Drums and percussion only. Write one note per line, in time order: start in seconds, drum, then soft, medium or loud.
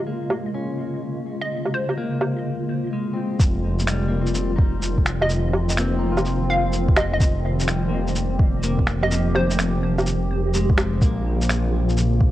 0.30 low woodblock medium
1.65 low woodblock soft
1.89 low woodblock soft
2.21 low woodblock medium
3.40 kick loud
3.40 shaker medium
3.79 shaker medium
3.87 finger snap loud
3.87 shaker medium
4.27 shaker soft
4.35 shaker medium
4.59 kick loud
4.82 shaker medium
4.98 kick medium
5.06 finger snap loud
5.06 shaker soft
5.22 low woodblock soft
5.30 shaker medium
5.54 low woodblock medium
5.69 shaker medium
5.77 finger snap loud
5.77 shaker medium
6.17 low woodblock medium
6.17 shaker soft
6.25 shaker medium
6.73 shaker medium
6.89 kick loud
6.96 finger snap loud
6.96 low woodblock medium
6.96 shaker soft
7.20 kick loud
7.20 shaker medium
7.60 shaker medium
7.68 finger snap loud
7.68 shaker medium
8.07 shaker soft
8.15 shaker medium
8.39 kick loud
8.63 shaker medium
8.79 kick medium
8.87 finger snap loud
8.87 shaker soft
9.03 low woodblock soft
9.11 shaker medium
9.35 low woodblock medium
9.50 shaker medium
9.59 finger snap loud
9.59 shaker medium
9.98 low woodblock medium
9.98 shaker soft
10.06 shaker medium
10.54 shaker medium
10.70 kick loud
10.78 finger snap loud
10.78 low woodblock medium
10.78 shaker soft
11.02 kick loud
11.02 shaker medium
11.41 shaker medium
11.49 finger snap loud
11.49 shaker medium
11.89 shaker soft
11.97 shaker medium
12.21 kick loud